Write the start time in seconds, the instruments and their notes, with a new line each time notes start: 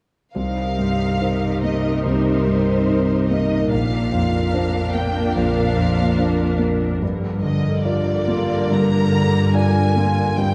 0.35 grand piano C2, harp C3, cello section C3, viola section D#4 A#4, violin section F5
0.77 grand piano G2, harp C4
1.21 grand piano D#4 C5, harp A#4
1.63 grand piano A#3, harp D#4, violin section D#5
2.03 grand piano C2, harp G3, violin section C5
2.45 grand piano G2, harp C4
2.87 grand piano D#4 C5, harp A#4
3.28 grand piano A#3, harp D#4, violin section D#5
3.69 grand piano A#1, harp A#2, cello section A#2, viola section D4 A#4, violin section F5
4.10 grand piano F2, harp C4
4.52 grand piano D4 C5, harp A#4
4.93 harp A#3, grand piano A#3, violin section G5
5.35 grand piano A#1, harp F3, violin section F5
5.76 grand piano F2, harp C4
6.17 grand piano D4 C5, harp A#4
6.59 grand piano A#3
7.02 harp G2, cello section G2, grand piano G2, viola section D3 A#4
7.43 grand piano D3, violin section D#5
7.85 grand piano F4 D5, harp A#4, violin section D5
8.27 grand piano A#3, harp F4
8.71 grand piano G2, harp D3, violin section A#5
9.13 grand piano D3, harp D4
9.54 grand piano F4 D5, harp A#4, violin section G#5
9.96 grand piano A#3, harp F4
10.37 harp G2, grand piano G2, cello section G2, viola section C4 A#4, violin section G5